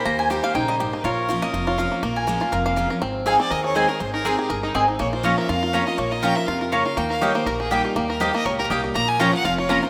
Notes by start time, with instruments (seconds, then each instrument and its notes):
Already playing: five-string banjo G4 A#4, fiddle C5
0.05 upright bass D#2, steel-string acoustic guitar D#3, five-string banjo A#3, mandolin A#5
0.19 mandolin G#5
0.30 steel-string acoustic guitar G3 A#3 D#4 G4, five-string banjo G4, mandolin G5
0.43 five-string banjo A#3, steel-string acoustic guitar D#4 G4, mandolin F5
0.55 upright bass A#1, steel-string acoustic guitar C#3, five-string banjo D#4, mandolin G5
0.68 five-string banjo G3, mandolin D#5
0.80 steel-string acoustic guitar G#2, five-string banjo G4
0.93 five-string banjo D#4
1.04 upright bass A#1, steel-string acoustic guitar A#2, five-string banjo F4, fiddle A#4, mandolin C#5
1.29 steel-string acoustic guitar F3 A#3 C#4 F4, five-string banjo F4
1.42 five-string banjo A#3, steel-string acoustic guitar C#4 F4, mandolin D#5
1.53 upright bass F1, steel-string acoustic guitar F2, five-string banjo F4
1.67 five-string banjo F4, mandolin C#5
1.78 steel-string acoustic guitar F3 A#3 C#4 F4, five-string banjo F4, mandolin F5
1.92 five-string banjo A#3
2.02 upright bass A#1, steel-string acoustic guitar A#2, five-string banjo A#3, fiddle A#4
2.16 mandolin G#5
2.27 steel-string acoustic guitar F3 G#3 C#4 F4, five-string banjo A#3
2.40 steel-string acoustic guitar C#4 F4, five-string banjo F4
2.52 upright bass F1, steel-string acoustic guitar F2, five-string banjo A#4, mandolin F5
2.66 five-string banjo A#3, mandolin F5
2.76 steel-string acoustic guitar F3 G#3 C#4 F4, five-string banjo F4
2.90 steel-string acoustic guitar C#4 F4, five-string banjo A#4
3.01 upright bass G#1, steel-string acoustic guitar G#2, five-string banjo C4
3.26 steel-string acoustic guitar G#3 C4 D#4 G#4, mandolin C4 G#4 D#5 G#5, five-string banjo G#4, fiddle F5
3.39 five-string banjo C4, steel-string acoustic guitar D#4 G#4, fiddle D5
3.51 upright bass D#2, steel-string acoustic guitar D#3, five-string banjo A#4, fiddle D#5
3.64 five-string banjo G#4, fiddle C#5
3.75 steel-string acoustic guitar G#3 C4 D#4 G#4, five-string banjo G#3, mandolin C4 G#4 D#5 G#5, fiddle C5
3.88 steel-string acoustic guitar D#4 G#4, five-string banjo G#4, fiddle A#4
4.00 upright bass G#1, steel-string acoustic guitar G#2, five-string banjo G#4, fiddle C5
4.14 five-string banjo D#4, fiddle A#4
4.25 steel-string acoustic guitar G#3 C4 D#4 G#4, mandolin C4 G#4 D#5 G#5, fiddle G#4, five-string banjo A#4
4.38 fiddle G4, five-string banjo G#4
4.50 upright bass G1, steel-string acoustic guitar G2, fiddle G#4, five-string banjo A#4
4.63 fiddle D#4, five-string banjo D#4
4.74 upright bass G#1, steel-string acoustic guitar G#2, mandolin C4 G#4 D#5 G#5, five-string banjo C4
4.88 five-string banjo D#4
4.99 upright bass A#1, steel-string acoustic guitar A#2, five-string banjo A#3, fiddle C#5
5.13 five-string banjo F4, fiddle C5
5.23 steel-string acoustic guitar F3 A#3 C#4 F4, mandolin C#4 F4 C#5 A#5, five-string banjo F4, fiddle D#5
5.37 five-string banjo A#4, fiddle E5
5.48 upright bass F2, steel-string acoustic guitar F2, five-string banjo F4, fiddle F5
5.63 five-string banjo F4
5.73 steel-string acoustic guitar F3 A#3 C#4 F4, five-string banjo A#3, mandolin C#4 F4 C#5 A#5
5.86 steel-string acoustic guitar C#4 F4, five-string banjo F4, fiddle D#5
5.98 upright bass A#1, steel-string acoustic guitar A#2, five-string banjo A#3, fiddle C#5
6.11 five-string banjo F4, fiddle D#5
6.22 steel-string acoustic guitar F3 A#3 C#4 F4, mandolin C#4 F4 C#5 A#5, five-string banjo F4, fiddle G5
6.35 five-string banjo A#4, fiddle E5
6.47 upright bass F2, steel-string acoustic guitar C3, five-string banjo F4, fiddle F5
6.60 five-string banjo F4, fiddle A#4
6.72 steel-string acoustic guitar C#3, five-string banjo A#3, mandolin C#4 F4 C#5 A#5, fiddle C#5
6.86 five-string banjo F4, fiddle F5
6.97 upright bass D#2, steel-string acoustic guitar D#3, five-string banjo A#3, fiddle G5
7.10 five-string banjo A#4, fiddle F5
7.21 steel-string acoustic guitar G3 A#3 D#4 G4, mandolin A#3 G4 D#5 G5, five-string banjo G4, fiddle C#5
7.35 five-string banjo A#3, steel-string acoustic guitar D#4 G4, fiddle C5
7.46 upright bass A#1, steel-string acoustic guitar A#2, five-string banjo A#4, fiddle A#4
7.60 five-string banjo G4, fiddle G#4
7.71 steel-string acoustic guitar G3 A#3 D#4 G4, five-string banjo G3, mandolin A#3 G4 D#5 G5, fiddle G4
7.85 fiddle F4, five-string banjo G4
7.96 upright bass D#2, steel-string acoustic guitar D#3, five-string banjo A#3, fiddle G4
8.09 fiddle A#4, five-string banjo A#4
8.20 steel-string acoustic guitar G3 A#3 D#4 G4, mandolin A#3 G4 D#5 G5, five-string banjo G4, fiddle C5
8.34 five-string banjo A#3, steel-string acoustic guitar D#4 G4, fiddle D#5
8.45 upright bass C#2, steel-string acoustic guitar A#2, five-string banjo A#4, fiddle C#5
8.59 five-string banjo G4, fiddle A#4
8.70 upright bass C2, steel-string acoustic guitar G3 A#3 D#4 G4, five-string banjo G3, mandolin A#3 G4 D#5 G5
8.84 five-string banjo G4
8.95 upright bass A#1, steel-string acoustic guitar A#2, five-string banjo A#3, fiddle A#5
9.08 fiddle G#5
9.19 steel-string acoustic guitar F3 A#3 C#4 F4, mandolin C#4 F4 C#5 A#5, five-string banjo F4, fiddle G5
9.33 steel-string acoustic guitar C#4 F4, five-string banjo A#4, fiddle F#5
9.44 upright bass F1, steel-string acoustic guitar F2, five-string banjo F4, fiddle F5
9.58 five-string banjo F4, fiddle C#5
9.69 steel-string acoustic guitar F3 A#3 C#4 F4, five-string banjo A#3, mandolin C#4 F4 C#5 A#5, fiddle A#4
9.82 steel-string acoustic guitar C#4 F4, five-string banjo F4, fiddle C5